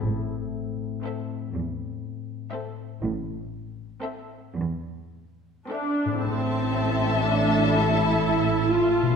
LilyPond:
<<
  \new Staff \with { instrumentName = "Violin section" } { \time 6/8 \key a \minor \tempo 4. = 40 r4 e''8 r4 e''8 | r4 e''8 r4 e''8 | a'2. | }
  \new Staff \with { instrumentName = "Violin section" } { \time 6/8 \key a \minor r4 a'8 r4 a'8 | r4 a'8 r4 a'8 | <e'' a''>2. | }
  \new Staff \with { instrumentName = "Harp" } { \time 6/8 \key a \minor <a, c' e' a'>2.~ | <a, c' e' a'>2. | <a, c' e' a'>2. | }
  \new Staff \with { instrumentName = "Viola section" } { \time 6/8 \key a \minor r4 c'8 r4 c'8 | r4 c'8 r4 <c' d'>8 | c'4 d'8 e'4 f'8 | }
  \new Staff \with { instrumentName = "Cello section" } { \clef bass \time 6/8 \key a \minor a,4. e,4. | a,4. e,4. | a,2. | }
  \new Staff \with { instrumentName = "Double bass section" } { \clef bass \time 6/8 \key a \minor a,,4 r2 | a,,4 r2 | a,,2. | }
>>